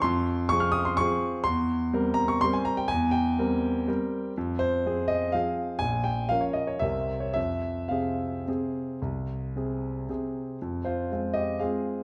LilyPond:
\new Staff \with { instrumentName = "Grand piano" } { \time 3/4 \key f \minor \tempo 4 = 122 << { c'''4 des'''16 f'''16 ees'''16 c'''16 des'''4 | c'''4. bes''16 des'''16 c'''16 aes''16 bes''16 g''16 | aes''8 g''2~ g''8 | r8 c''4 ees''8 f''4 |
aes''8 g''8 f''16 des''16 ees''16 des''16 e''8. des''16 | e''4 f''2~ | f''2 r4 | r8 <f' c''>4 <g' ees''>8 <aes' f''>4 | } \\ { f,4 <f c' aes'>4 <f c' aes'>4 | e,4 <g c' bes'>4 <g c' bes'>4 | e,4 <g c' bes'>4 <g c' bes'>4 | f,4 <f c' aes'>4 <f c' aes'>4 |
bes,,4 <f des' bes'>4 <c, c c' bes'>4 | f,4 <c c' aes'>4 <c c' aes'>4 | c,4 <c c' aes'>4 <c c' aes'>4 | f,4 <aes c' f'>4 <aes c' f'>4 | } >> }